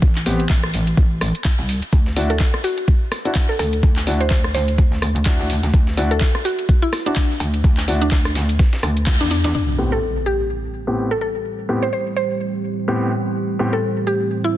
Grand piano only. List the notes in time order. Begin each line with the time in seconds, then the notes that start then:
0.26 B3 C4 G4
2.16 D4 E4 F#4
3.25 D4 E4 F#4
4.07 D4 E4 F#4
5.26 D4 E4 F#4
5.97 D4 E4 F#4
7.06 D4 E4 F#4
7.88 D4 E4 F#4
9.78 A2 B3 C4 G4
10.87 A2 B3 C4 G4
11.69 A2 B3 C4 G4
12.88 A2 B3 C4 G4
13.59 A2 B3 C4 G4